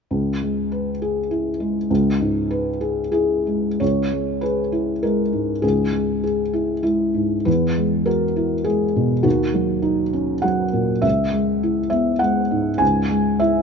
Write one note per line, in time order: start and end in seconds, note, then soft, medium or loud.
0.11 1.85 C#2 soft
0.42 0.90 G#3 soft
0.72 1.19 B4 soft
1.02 1.49 G#4 soft
1.31 1.78 E4 soft
1.60 2.07 G#3 soft
1.90 3.77 C#2 medium
2.20 2.69 G#2 soft
2.51 3.00 B4 soft
2.81 3.10 G#4 soft
3.12 3.68 E4 soft
3.12 3.80 G#4 soft
3.47 3.81 G#3 soft
3.80 5.59 C#2 soft
3.80 4.42 C#5 medium
4.12 4.61 G#3 soft
4.41 4.91 G#4 soft
4.41 5.02 B4 medium
4.72 5.21 E4 soft
5.03 5.51 G#3 soft
5.03 5.63 A#4 soft
5.33 5.81 G#2 soft
5.62 7.43 C#2 soft
5.62 6.22 G#4 soft
5.92 6.41 G#3 soft
6.23 6.72 G#4 soft
6.53 6.81 E4 soft
6.83 7.34 G#3 soft
6.83 7.46 E4 soft
7.14 7.46 G#2 soft
7.45 9.21 E2 soft
7.45 8.06 B4 medium
7.77 8.25 G#3 soft
8.06 8.54 F#4 soft
8.06 8.65 A#4 medium
8.36 8.84 E4 soft
8.64 9.13 G#3 soft
8.64 9.24 G#4 medium
8.96 9.25 B2 soft
9.23 11.00 D#2 soft
9.23 10.44 F#4 medium
9.54 10.01 F#3 soft
9.82 10.32 D#4 soft
10.13 10.63 C#4 soft
10.42 10.92 F#3 soft
10.42 11.03 F#5 medium
10.73 11.03 A#2 soft
11.02 12.76 C#2 soft
11.02 11.88 E5 medium
11.32 11.80 G#3 soft
11.63 12.10 E4 soft
11.90 12.39 B3 soft
11.90 12.21 E5 medium
12.19 12.69 G#3 soft
12.19 12.80 F#5 medium
12.51 12.99 G#2 soft
12.78 13.62 C#2 soft
12.78 13.39 G#5 medium
13.10 13.58 G#3 soft
13.40 13.62 E4 soft
13.40 13.62 E5 medium